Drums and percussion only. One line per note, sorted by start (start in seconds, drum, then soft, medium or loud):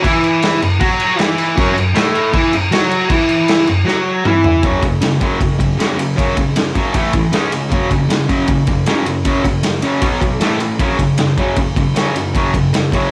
0.04 kick loud
0.04 crash medium
0.24 crash medium
0.43 snare loud
0.43 crash medium
0.62 crash medium
0.81 kick loud
0.81 crash medium
1.00 crash medium
1.19 snare loud
1.19 crash medium
1.38 crash medium
1.58 kick loud
1.58 crash medium
1.78 crash medium
1.96 snare loud
1.96 crash medium
2.15 crash medium
2.33 kick loud
2.33 crash medium
2.53 crash medium
2.72 snare loud
2.72 crash medium
2.91 crash medium
3.10 kick loud
3.10 crash medium
3.29 crash medium
3.48 snare loud
3.48 crash medium
3.67 crash medium
3.88 snare medium
4.25 mid tom medium
4.44 floor tom loud
4.63 kick loud
4.63 ride medium
4.82 kick medium
4.82 ride medium
5.02 snare loud
5.02 ride medium
5.21 kick medium
5.21 ride medium
5.41 kick loud
5.41 ride medium
5.60 kick medium
5.60 ride medium
5.80 snare loud
5.80 ride medium
5.99 ride medium
6.18 kick loud
6.18 ride medium
6.37 kick medium
6.37 ride medium
6.56 snare loud
6.56 ride medium
6.75 kick medium
6.75 ride medium
6.94 kick medium
6.94 ride medium
7.13 kick medium
7.13 ride medium
7.33 snare loud
7.33 ride medium
7.52 ride medium
7.72 kick loud
7.72 ride medium
7.91 kick medium
7.91 ride medium
8.10 snare loud
8.10 ride medium
8.29 kick medium
8.29 ride medium
8.48 kick loud
8.48 ride medium
8.67 kick medium
8.67 ride medium
8.86 snare loud
8.86 ride medium
9.06 ride medium
9.25 kick loud
9.25 ride medium
9.45 kick medium
9.45 ride medium
9.63 snare loud
9.63 ride loud
9.82 ride medium
10.02 kick loud
10.02 ride loud
10.22 kick medium
10.22 ride medium
10.41 snare loud
10.41 ride medium
10.60 ride medium
10.79 kick loud
10.79 ride medium
10.99 kick medium
10.99 ride medium
11.18 snare loud
11.18 ride medium
11.38 kick medium
11.38 ride medium
11.56 kick loud
11.56 ride medium
11.76 kick medium
11.76 ride medium
11.96 snare loud
11.96 ride medium
12.16 ride medium
12.35 kick loud
12.35 ride medium
12.54 kick medium
12.54 ride medium
12.74 snare loud
12.74 ride medium
12.92 kick medium
12.92 ride medium